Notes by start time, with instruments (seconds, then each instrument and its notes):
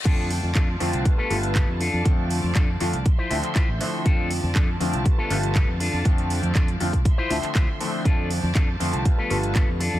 0.05 fingered electric bass F2, grand piano D3 F3 A3 C4 F4, clean electric guitar D4 F4 A4, string section F4 D5 A5, kick, closed hi-hat, crash
0.30 open hi-hat
0.43 fingered electric bass F2
0.55 clean electric guitar D4 F4 A4, kick, clap, closed hi-hat
0.80 fingered electric bass F2, grand piano D3 F3 A3 C4 F4, muted clean electric guitar stroke, open hi-hat
0.93 fingered electric bass C2, muted clean electric guitar stroke, closed hi-hat
1.05 grand piano D3 G3 A3 B3 F4, string section B4, kick, closed hi-hat
1.18 clean electric guitar B3 F4 A4, muted fingered electric bass stroke
1.30 fingered electric bass G1, grand piano D3 G3 A3 B3 F4, open hi-hat
1.43 closed hi-hat
1.55 clean electric guitar B3 F4 A4, kick, clap, closed hi-hat
1.68 fingered electric bass F2
1.80 string section F3 D5, clean electric guitar D4 F4 A4, open hi-hat
1.93 fingered electric bass F2
2.05 fingered electric bass F2, grand piano D3 F3 A3 C4 F4, kick, closed hi-hat
2.30 open hi-hat
2.43 fingered electric bass F2
2.55 clean electric guitar D4 F4 A4, kick, clap, closed hi-hat
2.80 fingered electric bass F2, grand piano D3 F3 A3 C4 F4, muted clean electric guitar stroke, open hi-hat
2.93 fingered electric bass C2, muted clean electric guitar stroke, closed hi-hat
3.06 string section E5 C6, kick, closed hi-hat
3.18 clean electric guitar E4 F4 C5, muted fingered electric bass stroke
3.30 fingered electric bass D2, grand piano D3 F3 A3 C4 E5, open hi-hat
3.43 clap, closed hi-hat
3.55 clean electric guitar E4 F4 C5, kick, clap, closed hi-hat
3.68 fingered electric bass A1
3.80 grand piano D3 F3 A3 C4 E4, muted clean electric guitar stroke, open hi-hat
4.05 fingered electric bass F2, grand piano F3 A3 C4 F4, clean electric guitar D4 F4 A4, string section D5 A5, kick, closed hi-hat
4.31 open hi-hat
4.43 fingered electric bass F2
4.55 clean electric guitar D4 F4 A4, kick, clap, closed hi-hat
4.80 fingered electric bass F2, grand piano D3 F3 A3 C4 F4, muted clean electric guitar stroke, open hi-hat
4.93 fingered electric bass C2, muted clean electric guitar stroke, closed hi-hat
5.05 grand piano D3 A3 B3, string section B4, kick, closed hi-hat
5.18 clean electric guitar B3 F4 A4, muted fingered electric bass stroke
5.30 fingered electric bass G1, grand piano D3 G3 A3 B3 F4, open hi-hat
5.43 closed hi-hat
5.55 clean electric guitar B3 F4 A4, kick, clap, closed hi-hat
5.68 fingered electric bass F2
5.80 clean electric guitar D4 F4 A4, string section D5, open hi-hat
5.93 fingered electric bass F2
6.05 fingered electric bass F2, grand piano D3 F3 A3 C4 F4, kick, closed hi-hat
6.18 closed hi-hat
6.30 open hi-hat
6.43 fingered electric bass F2, closed hi-hat
6.55 fingered electric bass F2, clean electric guitar D4 F4 A4, kick, clap, closed hi-hat
6.68 closed hi-hat
6.80 fingered electric bass F2, grand piano D3 F3 A3 C4 F4, muted clean electric guitar stroke, open hi-hat
6.93 fingered electric bass C2, muted clean electric guitar stroke, kick, closed hi-hat
7.05 string section E5 C6, kick, closed hi-hat
7.18 clean electric guitar E4 F4 C5, muted fingered electric bass stroke
7.30 fingered electric bass D2, grand piano D3 F3 A3 C4 E5, open hi-hat
7.43 muted fingered electric bass stroke, clap, closed hi-hat
7.55 fingered electric bass D2, clean electric guitar E4 F4 C5, kick, clap, closed hi-hat
7.80 grand piano D3 F3 A3 C4 E4, muted clean electric guitar stroke, open hi-hat
8.05 fingered electric bass F2, grand piano D3 F3 A3 C4 F4, clean electric guitar D4 F4 A4, string section D5 A5, kick, closed hi-hat
8.31 open hi-hat
8.43 fingered electric bass F2
8.55 fingered electric bass F2, clean electric guitar D4 F4 A4, kick, clap, closed hi-hat
8.80 fingered electric bass F2, grand piano D3 F3 A3 C4 F4, muted clean electric guitar stroke, open hi-hat
8.93 fingered electric bass C2, muted clean electric guitar stroke, closed hi-hat
9.05 grand piano D3 G3 B3, string section B4, kick, closed hi-hat
9.18 clean electric guitar B3 F4 A4, muted fingered electric bass stroke
9.30 fingered electric bass G1, grand piano D3 G3 A3 B3 F4, open hi-hat
9.43 closed hi-hat
9.55 clean electric guitar B3 F4 A4, kick, clap, closed hi-hat
9.68 fingered electric bass F2
9.80 clean electric guitar D4 F4 A4, string section D5 A5, open hi-hat
9.93 fingered electric bass F2